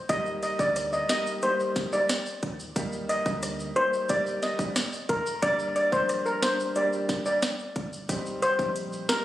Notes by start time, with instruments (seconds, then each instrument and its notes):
0.09 sub bass D#2, grand piano G3 A#3 D#4 G4, steel pan D#5, kick, closed hi-hat, shaker
0.26 shaker
0.43 steel pan D#5, closed hi-hat, shaker
0.59 sub bass D2, grand piano G3 A#3 D#4 G4, steel pan D5, kick, shaker
0.76 cross-stick, closed hi-hat, shaker
0.93 steel pan D#5, shaker
1.09 grand piano G3 A#3 D#4 G4, steel pan D#5, snare, closed hi-hat
1.26 shaker
1.42 grand piano G3 A#3 D#4 G4, steel pan C5, closed hi-hat, shaker
1.60 shaker
1.76 kick, snare, closed hi-hat
1.93 grand piano G3 A#3 D#4 G4, steel pan D5, shaker
2.09 cross-stick, snare, closed hi-hat, shaker
2.26 shaker
2.43 sub bass D#2, kick, closed hi-hat
2.60 shaker
2.76 sub bass D#2, grand piano G3 A#3 D#4 G4, kick, closed hi-hat, shaker
2.92 shaker
3.09 steel pan D#5, closed hi-hat, shaker
3.26 sub bass D2, grand piano G3 A#3 D#4 G4, kick, shaker
3.43 cross-stick, closed hi-hat, shaker
3.59 shaker
3.76 grand piano G3 A#3 D#4 G4, steel pan C5, closed hi-hat
3.93 shaker
4.09 grand piano G3 A#3 D#4 G4, steel pan D5, kick, closed hi-hat, shaker
4.26 shaker
4.42 steel pan D#5, snare, closed hi-hat
4.59 grand piano G3 A#3 D#4 G4, kick, shaker
4.76 cross-stick, snare, closed hi-hat, shaker
4.93 shaker
5.09 sub bass D#2, steel pan A#4, kick, closed hi-hat
5.26 shaker
5.42 sub bass G1, grand piano G3 A#3 D4 G4, steel pan D5, kick, closed hi-hat, shaker
5.59 shaker
5.76 steel pan D5, closed hi-hat, shaker
5.92 sub bass F1, grand piano G3 A#3 D4 G4, steel pan C5, kick, shaker
6.09 cross-stick, closed hi-hat, shaker
6.26 steel pan A#4, shaker
6.42 grand piano G3 A#3 D4 G4, steel pan C5, snare, closed hi-hat
6.60 shaker
6.75 grand piano G3 A#3 D4 G4, steel pan D5, closed hi-hat, shaker
6.93 shaker
7.09 kick, snare, closed hi-hat
7.25 grand piano G3 A#3 D4 G4, steel pan D5, shaker
7.42 cross-stick, snare, closed hi-hat, shaker
7.59 shaker
7.76 sub bass G1, kick, closed hi-hat
7.93 shaker
8.09 sub bass C2, grand piano G3 C4 D#4 G4, kick, closed hi-hat, shaker
8.26 shaker
8.42 steel pan C5, closed hi-hat, shaker
8.59 sub bass A#1, grand piano G3 C4 D#4 G4, kick, shaker
8.76 closed hi-hat, shaker
8.93 shaker
9.09 grand piano G3 C4 D#4 G4, steel pan A#4, snare, closed hi-hat